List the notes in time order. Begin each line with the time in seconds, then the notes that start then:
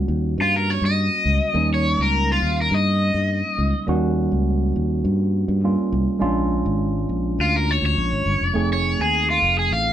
Already playing: G3 A#3 C#4 F#4
0.08 D#2
0.38 G2 F4
0.56 A#4
0.70 C#5
0.82 G2
0.86 D#5
1.25 C#2
1.54 D#2 G3 A#3 C#4 D#4
1.74 C#5
1.98 C#2
2.02 A#4
2.32 F4
2.42 D#2
2.62 A#4
2.71 G2 D#5
3.14 G2
3.58 C#2
3.86 D#2 G3 A#3 C#4 F#4
4.32 C#2
4.76 D#2
5.05 G2
5.48 G2
5.64 G3 A#3 C#4 F4
5.92 C2
6.19 A#1 G#3 C#4 D4 F4
6.66 G#1
7.09 A#1
7.39 D2 F4
7.56 A#4
7.71 C#5
7.82 D2
7.86 C#5
7.97 A#1
8.12 G#1
8.26 G1
8.41 F1
8.54 F1 A3 C4 D#4 G#4
8.73 C#5
8.99 D#2 G#4
9.30 F4
9.42 F1
9.59 G#4
9.71 A1 F5